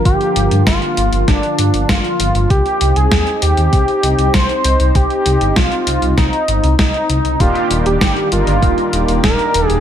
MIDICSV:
0, 0, Header, 1, 6, 480
1, 0, Start_track
1, 0, Key_signature, -3, "minor"
1, 0, Tempo, 612245
1, 42, Time_signature, 4, 2, 24, 8
1, 7684, End_track
2, 0, Start_track
2, 0, Title_t, "Analog synth lead"
2, 0, Program_c, 0, 81
2, 43, Note_on_c, 0, 67, 111
2, 491, Note_off_c, 0, 67, 0
2, 523, Note_on_c, 0, 65, 97
2, 1003, Note_on_c, 0, 62, 94
2, 1014, Note_off_c, 0, 65, 0
2, 1483, Note_on_c, 0, 65, 98
2, 1494, Note_off_c, 0, 62, 0
2, 1959, Note_off_c, 0, 65, 0
2, 1963, Note_on_c, 0, 67, 107
2, 2324, Note_on_c, 0, 68, 106
2, 2335, Note_off_c, 0, 67, 0
2, 2679, Note_off_c, 0, 68, 0
2, 2684, Note_on_c, 0, 67, 108
2, 3404, Note_on_c, 0, 72, 112
2, 3415, Note_off_c, 0, 67, 0
2, 3884, Note_on_c, 0, 67, 112
2, 3895, Note_off_c, 0, 72, 0
2, 4364, Note_on_c, 0, 65, 104
2, 4375, Note_off_c, 0, 67, 0
2, 4839, Note_off_c, 0, 65, 0
2, 4844, Note_on_c, 0, 63, 99
2, 5291, Note_off_c, 0, 63, 0
2, 5323, Note_on_c, 0, 63, 97
2, 5804, Note_on_c, 0, 65, 107
2, 5816, Note_off_c, 0, 63, 0
2, 6160, Note_off_c, 0, 65, 0
2, 6164, Note_on_c, 0, 67, 98
2, 6498, Note_off_c, 0, 67, 0
2, 6524, Note_on_c, 0, 65, 109
2, 7211, Note_off_c, 0, 65, 0
2, 7243, Note_on_c, 0, 70, 102
2, 7588, Note_off_c, 0, 70, 0
2, 7588, Note_on_c, 0, 68, 102
2, 7684, Note_off_c, 0, 68, 0
2, 7684, End_track
3, 0, Start_track
3, 0, Title_t, "Analog polysynth"
3, 0, Program_c, 1, 90
3, 5802, Note_on_c, 1, 55, 91
3, 5802, Note_on_c, 1, 58, 87
3, 5802, Note_on_c, 1, 62, 86
3, 5802, Note_on_c, 1, 63, 88
3, 5802, Note_on_c, 1, 67, 102
3, 6493, Note_off_c, 1, 55, 0
3, 6493, Note_off_c, 1, 58, 0
3, 6493, Note_off_c, 1, 62, 0
3, 6493, Note_off_c, 1, 63, 0
3, 6493, Note_off_c, 1, 67, 0
3, 6522, Note_on_c, 1, 55, 87
3, 6522, Note_on_c, 1, 58, 77
3, 6522, Note_on_c, 1, 62, 82
3, 6522, Note_on_c, 1, 63, 79
3, 6522, Note_on_c, 1, 70, 96
3, 7684, Note_off_c, 1, 55, 0
3, 7684, Note_off_c, 1, 58, 0
3, 7684, Note_off_c, 1, 62, 0
3, 7684, Note_off_c, 1, 63, 0
3, 7684, Note_off_c, 1, 70, 0
3, 7684, End_track
4, 0, Start_track
4, 0, Title_t, "Analog synth pad"
4, 0, Program_c, 2, 89
4, 0, Note_on_c, 2, 50, 80
4, 0, Note_on_c, 2, 53, 76
4, 0, Note_on_c, 2, 58, 75
4, 0, Note_on_c, 2, 65, 85
4, 1930, Note_off_c, 2, 50, 0
4, 1930, Note_off_c, 2, 53, 0
4, 1930, Note_off_c, 2, 58, 0
4, 1930, Note_off_c, 2, 65, 0
4, 1961, Note_on_c, 2, 60, 73
4, 1961, Note_on_c, 2, 63, 92
4, 5770, Note_off_c, 2, 60, 0
4, 5770, Note_off_c, 2, 63, 0
4, 5802, Note_on_c, 2, 58, 74
4, 5802, Note_on_c, 2, 67, 88
4, 5802, Note_on_c, 2, 74, 76
4, 5803, Note_on_c, 2, 51, 80
4, 7684, Note_off_c, 2, 51, 0
4, 7684, Note_off_c, 2, 58, 0
4, 7684, Note_off_c, 2, 67, 0
4, 7684, Note_off_c, 2, 74, 0
4, 7684, End_track
5, 0, Start_track
5, 0, Title_t, "Detuned saw bass"
5, 0, Program_c, 3, 39
5, 41, Note_on_c, 3, 31, 98
5, 127, Note_off_c, 3, 31, 0
5, 282, Note_on_c, 3, 31, 92
5, 367, Note_off_c, 3, 31, 0
5, 402, Note_on_c, 3, 43, 83
5, 487, Note_off_c, 3, 43, 0
5, 522, Note_on_c, 3, 31, 99
5, 607, Note_off_c, 3, 31, 0
5, 763, Note_on_c, 3, 31, 93
5, 847, Note_off_c, 3, 31, 0
5, 883, Note_on_c, 3, 31, 79
5, 967, Note_off_c, 3, 31, 0
5, 1002, Note_on_c, 3, 31, 93
5, 1087, Note_off_c, 3, 31, 0
5, 1242, Note_on_c, 3, 43, 91
5, 1327, Note_off_c, 3, 43, 0
5, 1363, Note_on_c, 3, 31, 78
5, 1448, Note_off_c, 3, 31, 0
5, 1482, Note_on_c, 3, 31, 98
5, 1567, Note_off_c, 3, 31, 0
5, 1722, Note_on_c, 3, 31, 92
5, 1807, Note_off_c, 3, 31, 0
5, 1842, Note_on_c, 3, 31, 82
5, 1927, Note_off_c, 3, 31, 0
5, 1962, Note_on_c, 3, 36, 97
5, 2047, Note_off_c, 3, 36, 0
5, 2202, Note_on_c, 3, 36, 92
5, 2287, Note_off_c, 3, 36, 0
5, 2323, Note_on_c, 3, 36, 80
5, 2407, Note_off_c, 3, 36, 0
5, 2442, Note_on_c, 3, 39, 93
5, 2527, Note_off_c, 3, 39, 0
5, 2682, Note_on_c, 3, 39, 93
5, 2767, Note_off_c, 3, 39, 0
5, 2802, Note_on_c, 3, 39, 80
5, 2887, Note_off_c, 3, 39, 0
5, 2922, Note_on_c, 3, 36, 101
5, 3007, Note_off_c, 3, 36, 0
5, 3161, Note_on_c, 3, 36, 93
5, 3247, Note_off_c, 3, 36, 0
5, 3281, Note_on_c, 3, 36, 82
5, 3367, Note_off_c, 3, 36, 0
5, 3402, Note_on_c, 3, 36, 101
5, 3487, Note_off_c, 3, 36, 0
5, 3640, Note_on_c, 3, 36, 93
5, 3726, Note_off_c, 3, 36, 0
5, 3761, Note_on_c, 3, 36, 85
5, 3847, Note_off_c, 3, 36, 0
5, 3882, Note_on_c, 3, 36, 96
5, 3967, Note_off_c, 3, 36, 0
5, 4122, Note_on_c, 3, 36, 94
5, 4207, Note_off_c, 3, 36, 0
5, 4241, Note_on_c, 3, 31, 78
5, 4327, Note_off_c, 3, 31, 0
5, 4362, Note_on_c, 3, 36, 96
5, 4447, Note_off_c, 3, 36, 0
5, 4601, Note_on_c, 3, 36, 91
5, 4687, Note_off_c, 3, 36, 0
5, 4721, Note_on_c, 3, 36, 82
5, 4807, Note_off_c, 3, 36, 0
5, 4842, Note_on_c, 3, 36, 96
5, 4927, Note_off_c, 3, 36, 0
5, 5081, Note_on_c, 3, 31, 93
5, 5166, Note_off_c, 3, 31, 0
5, 5200, Note_on_c, 3, 36, 81
5, 5286, Note_off_c, 3, 36, 0
5, 5322, Note_on_c, 3, 36, 102
5, 5407, Note_off_c, 3, 36, 0
5, 5561, Note_on_c, 3, 36, 91
5, 5646, Note_off_c, 3, 36, 0
5, 5681, Note_on_c, 3, 36, 79
5, 5767, Note_off_c, 3, 36, 0
5, 5802, Note_on_c, 3, 27, 95
5, 5887, Note_off_c, 3, 27, 0
5, 6041, Note_on_c, 3, 27, 94
5, 6126, Note_off_c, 3, 27, 0
5, 6162, Note_on_c, 3, 27, 80
5, 6247, Note_off_c, 3, 27, 0
5, 6281, Note_on_c, 3, 31, 99
5, 6367, Note_off_c, 3, 31, 0
5, 6522, Note_on_c, 3, 31, 91
5, 6607, Note_off_c, 3, 31, 0
5, 6641, Note_on_c, 3, 31, 81
5, 6727, Note_off_c, 3, 31, 0
5, 6762, Note_on_c, 3, 27, 100
5, 6847, Note_off_c, 3, 27, 0
5, 7001, Note_on_c, 3, 27, 90
5, 7087, Note_off_c, 3, 27, 0
5, 7121, Note_on_c, 3, 27, 80
5, 7207, Note_off_c, 3, 27, 0
5, 7242, Note_on_c, 3, 27, 101
5, 7327, Note_off_c, 3, 27, 0
5, 7483, Note_on_c, 3, 27, 91
5, 7567, Note_off_c, 3, 27, 0
5, 7603, Note_on_c, 3, 27, 82
5, 7684, Note_off_c, 3, 27, 0
5, 7684, End_track
6, 0, Start_track
6, 0, Title_t, "Drums"
6, 42, Note_on_c, 9, 36, 116
6, 42, Note_on_c, 9, 42, 52
6, 120, Note_off_c, 9, 36, 0
6, 121, Note_off_c, 9, 42, 0
6, 163, Note_on_c, 9, 42, 26
6, 241, Note_off_c, 9, 42, 0
6, 282, Note_on_c, 9, 42, 88
6, 361, Note_off_c, 9, 42, 0
6, 403, Note_on_c, 9, 42, 54
6, 481, Note_off_c, 9, 42, 0
6, 522, Note_on_c, 9, 36, 120
6, 523, Note_on_c, 9, 38, 118
6, 523, Note_on_c, 9, 42, 54
6, 600, Note_off_c, 9, 36, 0
6, 601, Note_off_c, 9, 38, 0
6, 601, Note_off_c, 9, 42, 0
6, 642, Note_on_c, 9, 42, 25
6, 721, Note_off_c, 9, 42, 0
6, 763, Note_on_c, 9, 42, 93
6, 841, Note_off_c, 9, 42, 0
6, 882, Note_on_c, 9, 42, 53
6, 961, Note_off_c, 9, 42, 0
6, 1002, Note_on_c, 9, 36, 121
6, 1003, Note_on_c, 9, 38, 61
6, 1003, Note_on_c, 9, 42, 50
6, 1081, Note_off_c, 9, 36, 0
6, 1081, Note_off_c, 9, 38, 0
6, 1081, Note_off_c, 9, 42, 0
6, 1123, Note_on_c, 9, 42, 26
6, 1201, Note_off_c, 9, 42, 0
6, 1243, Note_on_c, 9, 42, 91
6, 1321, Note_off_c, 9, 42, 0
6, 1363, Note_on_c, 9, 42, 53
6, 1441, Note_off_c, 9, 42, 0
6, 1482, Note_on_c, 9, 36, 112
6, 1483, Note_on_c, 9, 38, 113
6, 1483, Note_on_c, 9, 42, 50
6, 1560, Note_off_c, 9, 36, 0
6, 1561, Note_off_c, 9, 38, 0
6, 1561, Note_off_c, 9, 42, 0
6, 1603, Note_on_c, 9, 42, 27
6, 1681, Note_off_c, 9, 42, 0
6, 1722, Note_on_c, 9, 42, 92
6, 1801, Note_off_c, 9, 42, 0
6, 1842, Note_on_c, 9, 42, 50
6, 1921, Note_off_c, 9, 42, 0
6, 1962, Note_on_c, 9, 36, 120
6, 1963, Note_on_c, 9, 42, 49
6, 2040, Note_off_c, 9, 36, 0
6, 2041, Note_off_c, 9, 42, 0
6, 2083, Note_on_c, 9, 42, 23
6, 2161, Note_off_c, 9, 42, 0
6, 2202, Note_on_c, 9, 42, 87
6, 2280, Note_off_c, 9, 42, 0
6, 2323, Note_on_c, 9, 42, 52
6, 2401, Note_off_c, 9, 42, 0
6, 2442, Note_on_c, 9, 36, 123
6, 2443, Note_on_c, 9, 38, 118
6, 2443, Note_on_c, 9, 42, 52
6, 2520, Note_off_c, 9, 36, 0
6, 2521, Note_off_c, 9, 38, 0
6, 2521, Note_off_c, 9, 42, 0
6, 2563, Note_on_c, 9, 42, 27
6, 2641, Note_off_c, 9, 42, 0
6, 2682, Note_on_c, 9, 42, 93
6, 2760, Note_off_c, 9, 42, 0
6, 2802, Note_on_c, 9, 42, 51
6, 2880, Note_off_c, 9, 42, 0
6, 2922, Note_on_c, 9, 36, 122
6, 2922, Note_on_c, 9, 42, 50
6, 3000, Note_off_c, 9, 36, 0
6, 3001, Note_off_c, 9, 42, 0
6, 3042, Note_on_c, 9, 42, 25
6, 3121, Note_off_c, 9, 42, 0
6, 3162, Note_on_c, 9, 42, 92
6, 3241, Note_off_c, 9, 42, 0
6, 3282, Note_on_c, 9, 42, 51
6, 3360, Note_off_c, 9, 42, 0
6, 3402, Note_on_c, 9, 36, 115
6, 3402, Note_on_c, 9, 38, 112
6, 3402, Note_on_c, 9, 42, 49
6, 3480, Note_off_c, 9, 36, 0
6, 3480, Note_off_c, 9, 38, 0
6, 3480, Note_off_c, 9, 42, 0
6, 3522, Note_on_c, 9, 42, 27
6, 3600, Note_off_c, 9, 42, 0
6, 3641, Note_on_c, 9, 42, 89
6, 3720, Note_off_c, 9, 42, 0
6, 3761, Note_on_c, 9, 42, 52
6, 3840, Note_off_c, 9, 42, 0
6, 3882, Note_on_c, 9, 36, 118
6, 3882, Note_on_c, 9, 42, 48
6, 3960, Note_off_c, 9, 36, 0
6, 3960, Note_off_c, 9, 42, 0
6, 4002, Note_on_c, 9, 42, 24
6, 4080, Note_off_c, 9, 42, 0
6, 4121, Note_on_c, 9, 42, 89
6, 4200, Note_off_c, 9, 42, 0
6, 4242, Note_on_c, 9, 42, 50
6, 4321, Note_off_c, 9, 42, 0
6, 4362, Note_on_c, 9, 36, 120
6, 4362, Note_on_c, 9, 38, 118
6, 4362, Note_on_c, 9, 42, 50
6, 4440, Note_off_c, 9, 36, 0
6, 4440, Note_off_c, 9, 38, 0
6, 4440, Note_off_c, 9, 42, 0
6, 4482, Note_on_c, 9, 42, 26
6, 4560, Note_off_c, 9, 42, 0
6, 4602, Note_on_c, 9, 42, 91
6, 4680, Note_off_c, 9, 42, 0
6, 4722, Note_on_c, 9, 42, 48
6, 4800, Note_off_c, 9, 42, 0
6, 4842, Note_on_c, 9, 36, 121
6, 4842, Note_on_c, 9, 38, 60
6, 4842, Note_on_c, 9, 42, 47
6, 4920, Note_off_c, 9, 36, 0
6, 4920, Note_off_c, 9, 38, 0
6, 4920, Note_off_c, 9, 42, 0
6, 4962, Note_on_c, 9, 42, 25
6, 5041, Note_off_c, 9, 42, 0
6, 5082, Note_on_c, 9, 42, 86
6, 5161, Note_off_c, 9, 42, 0
6, 5202, Note_on_c, 9, 42, 48
6, 5281, Note_off_c, 9, 42, 0
6, 5322, Note_on_c, 9, 36, 114
6, 5323, Note_on_c, 9, 38, 112
6, 5323, Note_on_c, 9, 42, 45
6, 5400, Note_off_c, 9, 36, 0
6, 5401, Note_off_c, 9, 38, 0
6, 5401, Note_off_c, 9, 42, 0
6, 5443, Note_on_c, 9, 42, 25
6, 5521, Note_off_c, 9, 42, 0
6, 5563, Note_on_c, 9, 42, 85
6, 5641, Note_off_c, 9, 42, 0
6, 5683, Note_on_c, 9, 42, 48
6, 5761, Note_off_c, 9, 42, 0
6, 5802, Note_on_c, 9, 36, 111
6, 5803, Note_on_c, 9, 42, 47
6, 5880, Note_off_c, 9, 36, 0
6, 5881, Note_off_c, 9, 42, 0
6, 5923, Note_on_c, 9, 42, 22
6, 6001, Note_off_c, 9, 42, 0
6, 6042, Note_on_c, 9, 42, 82
6, 6120, Note_off_c, 9, 42, 0
6, 6162, Note_on_c, 9, 42, 49
6, 6241, Note_off_c, 9, 42, 0
6, 6282, Note_on_c, 9, 36, 115
6, 6283, Note_on_c, 9, 38, 116
6, 6283, Note_on_c, 9, 42, 48
6, 6360, Note_off_c, 9, 36, 0
6, 6361, Note_off_c, 9, 38, 0
6, 6361, Note_off_c, 9, 42, 0
6, 6402, Note_on_c, 9, 42, 24
6, 6481, Note_off_c, 9, 42, 0
6, 6522, Note_on_c, 9, 42, 85
6, 6601, Note_off_c, 9, 42, 0
6, 6642, Note_on_c, 9, 42, 49
6, 6721, Note_off_c, 9, 42, 0
6, 6762, Note_on_c, 9, 36, 113
6, 6762, Note_on_c, 9, 42, 47
6, 6840, Note_off_c, 9, 36, 0
6, 6841, Note_off_c, 9, 42, 0
6, 6882, Note_on_c, 9, 42, 23
6, 6961, Note_off_c, 9, 42, 0
6, 7002, Note_on_c, 9, 42, 85
6, 7080, Note_off_c, 9, 42, 0
6, 7122, Note_on_c, 9, 42, 47
6, 7200, Note_off_c, 9, 42, 0
6, 7241, Note_on_c, 9, 36, 114
6, 7242, Note_on_c, 9, 38, 108
6, 7242, Note_on_c, 9, 42, 47
6, 7320, Note_off_c, 9, 36, 0
6, 7321, Note_off_c, 9, 38, 0
6, 7321, Note_off_c, 9, 42, 0
6, 7362, Note_on_c, 9, 42, 26
6, 7441, Note_off_c, 9, 42, 0
6, 7482, Note_on_c, 9, 42, 86
6, 7561, Note_off_c, 9, 42, 0
6, 7602, Note_on_c, 9, 42, 49
6, 7681, Note_off_c, 9, 42, 0
6, 7684, End_track
0, 0, End_of_file